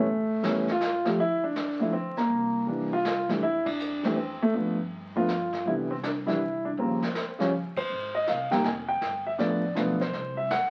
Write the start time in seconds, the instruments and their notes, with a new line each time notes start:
Already playing: grand piano A3
0.06 upright bass A1, brush sweep, kick
0.43 grand piano E3 G3 B3 C#4, snare, hi-hat pedal
0.68 grand piano F4, snare
0.81 snare, hi-hat pedal
1.05 grand piano F3 A3 C4 G4, snare
1.18 upright bass D2, grand piano E4, brush sweep, kick
1.44 grand piano D4
1.56 snare, hi-hat pedal
1.80 grand piano F3 A3 C4 E4
1.93 grand piano C4
2.17 grand piano A#3, snare
2.30 upright bass C2, brush sweep, kick
2.67 grand piano E3 G3 A#3 D4
2.93 grand piano F4
3.05 snare, hi-hat pedal
3.29 grand piano E3 G3 A3 D4, snare
3.41 upright bass F2, grand piano E4, brush sweep, kick
3.65 grand piano D4, kick, ride
3.79 hi-hat pedal
4.03 grand piano E3 G3 A3 C4, snare
4.16 grand piano C4
4.42 grand piano A3
4.53 upright bass G2, grand piano D3 F3 A3 B3, brush sweep, kick
5.16 grand piano D3 F3 A3 B3 F4
5.29 snare, hi-hat pedal
5.53 kick, snare
5.66 upright bass C2, grand piano D3 E3 G3 B3 E4, brush sweep, kick
5.91 grand piano C4
6.03 grand piano D4, snare, hi-hat pedal
6.26 grand piano D3 E3 G3 D4 E4, snare
6.65 grand piano D4
6.77 upright bass D#2, grand piano C#3 F3 G3 A#3 C4, brush sweep, kick
7.02 snare
7.15 snare, hi-hat pedal
7.39 grand piano C#3 F3 G3 C#4, snare
7.77 grand piano C5, muted upright bass stroke, kick, ride
7.90 upright bass G#1, brush sweep
8.15 grand piano D#5
8.27 upright bass C2, grand piano F5, kick, snare, hi-hat pedal
8.51 grand piano C3 D#3 G3 A#3 G5, muted upright bass stroke, snare
8.64 upright bass F1, grand piano G#5, kick, snare
8.88 grand piano G5
9.01 upright bass G1, brush sweep, kick, snare
9.27 grand piano E5
9.38 upright bass A1, grand piano D3 F3 A3 B3 D5, kick, snare
9.75 upright bass B1, grand piano D3 F3 A3 B3, kick, snare, hi-hat pedal
10.01 grand piano C5, snare
10.13 upright bass C2, brush sweep, kick, snare
10.37 grand piano E5
10.50 upright bass E2, grand piano F#5, kick, snare, hi-hat pedal